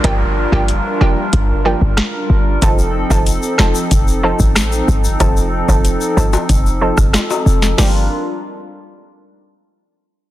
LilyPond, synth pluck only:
\new Staff \with { instrumentName = "Synth pluck" } { \time 4/4 \key g \minor \tempo 4 = 93 <f bes d' g'>8. <f bes d' g'>16 r8 <f bes d' g'>16 r8. <f bes d' g'>16 r4 r16 | <f c' ees' a'>8. <f c' ees' a'>16 r8 <f c' ees' a'>16 r8. <f c' ees' a'>16 r4 r16 | <f c' ees' a'>8. <f c' ees' a'>16 r8 <f c' ees' a'>16 r8. <f c' ees' a'>16 r4 r16 | <f bes d' g'>8 r2. r8 | }